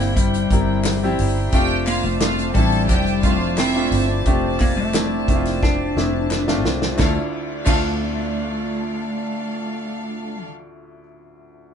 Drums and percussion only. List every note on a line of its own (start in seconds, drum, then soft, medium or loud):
0.17 kick loud
0.17 hi-hat pedal medium
0.17 open hi-hat medium
0.34 hi-hat pedal medium
0.51 kick medium
0.51 hi-hat pedal medium
0.51 open hi-hat medium
0.85 snare medium
0.85 clap medium
0.85 hi-hat pedal medium
0.85 open hi-hat medium
1.19 hi-hat pedal medium
1.19 open hi-hat medium
1.52 kick loud
1.52 hi-hat pedal medium
1.52 open hi-hat medium
1.87 clap medium
1.87 hi-hat pedal medium
1.87 open hi-hat medium
2.03 open hi-hat medium
2.20 snare loud
2.20 clap medium
2.20 hi-hat pedal medium
2.20 open hi-hat medium
2.38 hi-hat pedal medium
2.55 kick medium
2.55 hi-hat pedal medium
2.55 open hi-hat medium
2.72 open hi-hat medium
2.89 kick medium
2.89 hi-hat pedal medium
2.89 open hi-hat medium
3.06 hi-hat pedal medium
3.23 kick medium
3.23 hi-hat pedal medium
3.23 open hi-hat medium
3.58 snare medium
3.58 clap medium
3.58 hi-hat pedal medium
3.58 open hi-hat medium
3.92 hi-hat pedal medium
3.92 open hi-hat medium
4.26 kick loud
4.26 hi-hat pedal medium
4.26 open hi-hat medium
4.60 kick medium
4.60 clap medium
4.60 hi-hat pedal medium
4.60 open hi-hat medium
4.94 snare loud
4.94 clap medium
4.94 hi-hat pedal medium
4.94 open hi-hat medium
5.28 kick medium
5.28 hi-hat pedal medium
5.28 open hi-hat medium
5.45 snare soft
5.45 open hi-hat medium
5.63 kick medium
5.63 snare medium
5.97 snare medium
6.31 snare medium
6.31 clap medium
6.48 snare medium
6.65 snare loud
6.82 snare loud
6.99 kick loud
6.99 snare medium
6.99 clap medium
7.67 kick loud
7.67 clap medium
7.67 crash medium